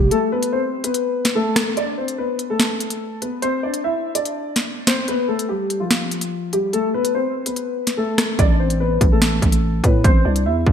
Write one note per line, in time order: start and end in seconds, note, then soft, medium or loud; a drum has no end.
0.00 0.10 F1 loud
0.11 0.28 A3 medium
0.11 0.28 A4 medium
0.11 closed hi-hat medium
0.32 0.49 B3 medium
0.32 0.49 B4 medium
0.43 closed hi-hat medium
0.53 0.82 C4 medium
0.53 0.82 C5 medium
0.84 1.33 B3 medium
0.84 1.32 B4 medium
0.84 closed hi-hat medium
0.94 closed hi-hat medium
1.25 snare medium
1.25 closed hi-hat loud
1.35 1.75 A3 medium
1.35 1.74 A4 medium
1.56 cross-stick loud
1.56 snare loud
1.56 closed hi-hat medium
1.77 1.94 D4 medium
1.77 1.94 D5 loud
1.77 closed hi-hat medium
1.98 2.15 C4 medium
1.98 2.14 C5 medium
2.08 closed hi-hat medium
2.18 2.48 B3 medium
2.18 2.47 B4 medium
2.39 closed hi-hat medium
2.50 3.18 A3 medium
2.50 3.18 A4 medium
2.60 snare loud
2.80 closed hi-hat medium
2.90 closed hi-hat medium
3.22 3.39 B3 medium
3.22 3.39 B4 medium
3.22 closed hi-hat medium
3.42 3.60 C4 medium
3.42 3.59 C5 loud
3.42 closed hi-hat medium
3.63 3.80 D4 medium
3.63 3.80 D5 medium
3.74 closed hi-hat medium
3.84 4.14 E4 medium
3.84 4.13 E5 medium
4.15 4.84 D4 medium
4.15 4.83 D5 medium
4.15 closed hi-hat medium
4.25 closed hi-hat medium
4.56 snare medium
4.56 closed hi-hat loud
4.87 5.04 C4 medium
4.87 5.04 C5 medium
4.87 snare loud
4.87 closed hi-hat medium
5.08 5.25 B3 medium
5.08 5.25 B4 loud
5.08 closed hi-hat medium
5.28 5.46 A3 medium
5.28 5.45 A4 medium
5.39 closed hi-hat medium
5.49 5.79 G3 medium
5.49 5.78 G4 medium
5.70 closed hi-hat medium
5.80 6.49 F3 medium
5.80 6.49 F4 medium
5.91 snare loud
6.11 closed hi-hat medium
6.21 closed hi-hat medium
6.53 6.70 G3 medium
6.53 6.70 G4 medium
6.53 closed hi-hat medium
6.73 6.90 A3 medium
6.73 6.90 A4 medium
6.73 closed hi-hat medium
6.94 7.11 B3 medium
6.94 7.11 B4 medium
7.05 closed hi-hat medium
7.15 7.44 C4 medium
7.15 7.44 C5 medium
7.46 7.95 B3 medium
7.46 7.95 B4 medium
7.46 closed hi-hat medium
7.56 closed hi-hat medium
7.87 snare medium
7.87 closed hi-hat medium
7.97 8.37 A3 medium
7.97 8.36 A4 medium
8.18 cross-stick loud
8.18 snare loud
8.18 closed hi-hat medium
8.39 8.98 A1 loud
8.39 8.56 D4 medium
8.39 8.56 D5 loud
8.39 kick loud
8.39 closed hi-hat medium
8.60 8.77 C4 medium
8.60 8.76 C5 medium
8.70 closed hi-hat medium
8.80 9.10 B3 medium
8.80 9.09 B4 medium
9.01 9.41 A1 loud
9.01 kick loud
9.01 closed hi-hat medium
9.12 9.81 A3 medium
9.12 9.80 A4 medium
9.22 snare loud
9.42 9.82 A1 loud
9.42 kick medium
9.42 closed hi-hat medium
9.52 closed hi-hat medium
9.84 10.04 A2 loud
9.84 10.01 B3 medium
9.84 10.01 B4 medium
9.84 kick medium
9.84 closed hi-hat medium
10.04 10.24 A1 loud
10.04 10.22 C4 medium
10.04 10.21 C5 loud
10.04 kick loud
10.04 closed hi-hat medium
10.25 10.47 C2 loud
10.25 10.42 D4 medium
10.25 10.42 D5 medium
10.36 closed hi-hat medium
10.46 10.65 E2 loud
10.46 10.72 E4 medium
10.46 10.72 E5 medium
10.67 10.72 A1 loud
10.67 kick loud